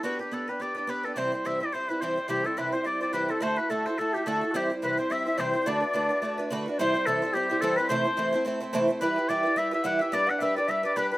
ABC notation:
X:1
M:4/4
L:1/16
Q:"Swing" 1/4=214
K:Clyd
V:1 name="Flute"
z16 | z16 | G2 A2 B2 c3/2 e/2 d2 d2 B2 A2 | c2 B2 A4 A2 G2 A3- A/2 F/2 |
G2 z2 B2 c2 e2 e2 c4 | d12 z3 d | c4 A4 G2 G2 A2 B2 | c8 z8 |
B4 d4 e2 e2 f3/2 f/2 e2 | d2 f2 e2 d2 e4 B2 B2 |]
V:2 name="Oboe"
F2 G2 A2 B2 d2 d2 B2 A3/2 d/2 | c2 c2 e2 d2 c2 B2 c4 | G2 A2 B2 c2 d2 d2 B2 A2 | c2 B2 A2 c2 A2 G2 A4 |
G2 z2 B2 c2 e2 e2 c4 | d12 z4 | c4 A4 G4 A2 B2 | c8 z8 |
B4 d4 e2 e2 f2 e2 | d2 f2 e2 d2 e2 d2 B2 B2 |]
V:3 name="Twelve-string acoustic guitar"
[B,DGB]2 [DGB]2 [B,DGB]2 [DGB]2 [B,DGB]2 [DGB]2 [B,DGB]2 [DGB]2 | [C,E,G,CEc]2 [G,Ec]2 [C,E,G,CEc]2 [G,CEc]2 [G,CEc]2 [G,CEc]2 [C,E,G,CEc]2 [G,CEc]2 | [C,E,G,CEc]2 [G,CEc]2 [C,E,G,CEc]2 [G,CEc]2 [G,CEc]2 [G,CEc]2 [C,E,G,CEc]2 [G,CEc]2 | [D,A,EFA]2 [EFA]2 [D,A,EFA]2 [EFA]2 [A,EFA]2 [EFA]2 [D,A,EFA]2 [EFA]2 |
[C,E,G,CEc]2 [G,CEc]2 [C,E,G,CEc]2 [G,CEc]2 [G,CEc]2 [G,CEc]2 [C,E,G,CEc]2 [G,CEc]2 | [D,A,DFB]2 [DFB]2 [D,A,DFB]2 [DFB]2 [A,DFB]2 [DFB]2 [D,A,DFB]2 [DFB]2 | [C,E,G,CEc]2 [G,CEc]2 [C,E,G,CEc]2 [G,CEc]2 [G,CEc]2 [G,CEc]2 [C,E,G,CEc]2 [G,CEc]2 | [C,E,A,CEc]2 [A,CEc]2 [C,E,A,CEc]2 [A,CEc]2 [A,CEc]2 [A,CEc]2 [C,E,A,CEc]2 [A,CEc]2 |
[E,G,EGB]2 [EGB]2 [E,G,EGB]2 [EGB]2 [G,EGB]2 [EGB]2 [E,G,EGB]2 [GB]2 | [G,DGB]2 [DGB]2 [G,DGB]2 [DGB]2 [G,DGB]2 [DGB]2 [G,DGB]2 [DGB]2 |]